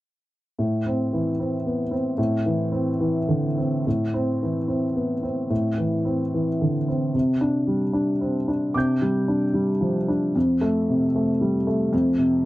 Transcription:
0.59 2.14 A2 soft
0.86 1.30 C4 soft
1.13 1.56 E3 soft
1.40 1.81 C4 soft
1.66 1.92 B3 soft
1.91 2.34 C4 soft
2.18 3.81 A2 soft
2.46 2.89 E3 soft
2.72 3.16 C4 soft
3.00 3.45 E3 soft
3.28 3.57 D3 soft
3.57 3.86 C4 soft
3.87 5.47 A2 soft
4.14 4.57 C4 soft
4.43 4.85 E3 soft
4.68 5.12 C4 soft
4.96 5.23 B3 soft
5.23 5.67 C4 soft
5.50 7.10 A2 soft
5.78 6.22 E3 soft
6.05 6.49 C4 soft
6.34 6.77 E3 soft
6.61 6.88 D3 soft
6.88 7.14 C4 soft
7.14 8.71 C3 soft
7.41 7.84 D4 soft
7.67 8.10 G3 soft
7.93 8.36 D4 soft
8.21 8.48 C4 soft
8.48 8.91 D4 soft
8.74 10.31 C3 soft
8.74 10.31 D6 soft
8.74 10.33 G6 soft
9.02 9.44 G3 soft
9.28 9.71 D4 soft
9.54 9.97 G3 soft
9.81 10.08 F3 soft
10.08 10.35 D4 soft
10.36 11.89 F2 soft
10.61 11.04 A3 soft
10.89 11.31 C3 soft
11.16 11.57 A3 soft
11.41 11.67 G3 soft
11.67 12.08 A3 soft
11.93 12.45 F2 medium
12.18 12.45 C3 soft

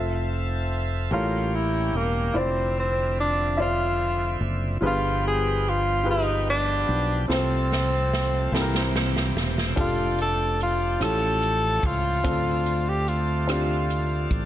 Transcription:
0.00 1.08 F1 medium
0.00 1.11 F3 medium
0.00 1.11 C4 medium
0.00 0.91 F4 medium
0.00 0.91 A4 medium
0.00 1.11 A4 medium
0.00 0.92 C5 medium
0.00 0.92 E5 medium
0.00 1.11 E5 medium
1.11 1.90 A1 medium
1.11 2.31 A2 soft
1.11 2.35 G3 soft
1.11 2.35 A#3 soft
1.11 2.35 C#4 soft
1.11 1.57 F4 medium
1.11 2.16 G4 medium
1.11 2.35 G4 medium
1.11 2.16 A4 soft
1.11 2.16 A#4 soft
1.11 2.16 C#5 medium
1.55 1.98 E4 medium
1.93 2.31 E1 medium
1.93 2.40 A#3 medium
2.34 4.37 F1 medium
2.34 4.78 D3 medium
2.34 4.78 F3 medium
2.34 4.78 C4 soft
2.34 3.39 E4 medium
2.34 3.39 F4 medium
2.34 3.39 C5 medium
2.34 3.40 D5 medium
2.34 4.78 E5 medium
2.39 2.78 C4 medium
2.79 3.16 C4 medium
3.20 3.57 D4 medium
3.57 4.63 F4 medium
3.57 4.63 C5 soft
3.57 4.64 D5 medium
3.57 4.62 E5 medium
3.62 4.49 F4 medium
4.41 4.79 F#1 medium
4.81 6.84 G1 medium
4.81 6.02 G2 medium
4.81 7.26 F3 medium
4.81 5.86 G3 medium
4.81 7.26 G3 medium
4.81 7.26 B3 soft
4.81 5.86 F4 medium
4.81 5.87 G#4 medium
4.81 5.87 B4 medium
4.81 7.26 G5 medium
4.86 5.23 F4 medium
5.27 5.71 G#4 medium
5.69 6.08 F4 medium
6.04 7.09 F4 medium
6.04 7.10 G4 soft
6.04 7.10 G#4 soft
6.04 7.10 B4 medium
6.10 6.46 D#4 medium
6.50 7.27 D4 medium
6.89 7.26 B1 medium
7.28 8.49 C2 medium
7.28 8.49 C3 soft
7.28 8.53 F3 medium
7.28 8.53 A3 soft
7.28 8.33 C4 medium
7.28 8.53 C4 soft
7.28 8.34 F4 medium
7.28 8.34 A4 medium
7.28 8.54 A4 medium
7.28 8.35 C5 medium
7.28 snare soft
7.32 8.92 C4 medium
7.72 snare medium
8.13 snare medium
8.52 9.31 C2 medium
8.52 9.73 C3 medium
8.52 9.77 E3 medium
8.52 9.77 A#3 medium
8.52 9.57 C4 medium
8.52 9.78 C4 medium
8.52 9.57 E4 medium
8.52 9.58 G4 medium
8.52 9.77 G4 medium
8.52 8.60 A4 medium
8.52 snare medium
8.61 9.61 A#4 medium
8.75 snare medium
8.96 snare medium
9.16 snare medium
9.34 9.73 E1 medium
9.34 snare medium
9.58 snare medium
9.76 10.97 F1 medium
9.76 11.01 F3 medium
9.76 11.01 A3 soft
9.76 10.81 D4 medium
9.76 11.01 D4 soft
9.76 10.81 F4 medium
9.76 10.81 G4 medium
9.76 11.01 G4 medium
9.76 10.82 A4 medium
9.76 kick medium
9.76 closed hi-hat medium
9.80 10.17 F4 medium
10.19 10.58 A4 medium
10.19 closed hi-hat soft
10.60 11.05 F4 medium
10.60 closed hi-hat soft
11.00 11.79 A1 medium
11.00 12.20 A2 soft
11.00 12.25 F3 medium
11.00 12.23 A3 soft
11.00 12.04 C#4 medium
11.00 12.25 C#4 soft
11.00 12.05 F4 soft
11.00 12.05 G4 soft
11.00 12.25 G4 medium
11.00 12.05 A4 medium
11.00 cross-stick medium
11.00 closed hi-hat medium
11.04 11.88 A4 medium
11.43 closed hi-hat soft
11.83 12.21 C#2 medium
11.83 12.90 F4 medium
11.83 kick medium
11.83 closed hi-hat soft
12.23 14.26 D2 medium
12.23 14.45 D3 medium
12.23 13.44 D3 soft
12.23 14.45 A3 soft
12.23 13.28 C4 medium
12.23 14.45 C4 soft
12.23 13.28 D4 medium
12.23 14.45 F4 medium
12.23 13.29 F4 medium
12.23 13.29 A4 medium
12.23 kick medium
12.23 closed hi-hat medium
12.66 closed hi-hat soft
12.89 13.10 G4 medium
13.08 13.49 F4 medium
13.08 closed hi-hat soft
13.47 14.45 C4 medium
13.47 14.45 D4 medium
13.47 14.45 F4 soft
13.47 14.38 F4 medium
13.47 14.45 G4 medium
13.47 cross-stick medium
13.47 closed hi-hat medium
13.90 closed hi-hat soft
14.31 14.45 A1 medium
14.31 kick medium
14.31 closed hi-hat soft

